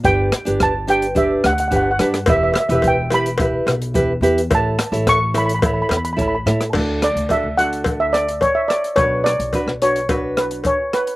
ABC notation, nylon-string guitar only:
X:1
M:4/4
L:1/16
Q:1/4=108
K:D
V:1 name="Nylon-string guitar"
[DGB]2 z [DGB]2 z [DGB] z [DGB]2 z2 [DGB] z [DGB] z | [EGB]2 z [EGB]2 z [EGB] z [EGB]2 z2 [EGB] z [EGB] z | [EAc]2 z [EAc]2 z [EAc] z [EAc]2 z2 [EAc] z [EAc] z | [DFA]2 z2 [DFA] z [DFA]4- [DFA] z4 z |
[DFB]2 z2 [DFB] z [DFB] z [DFB]4- [DFB] z3 |]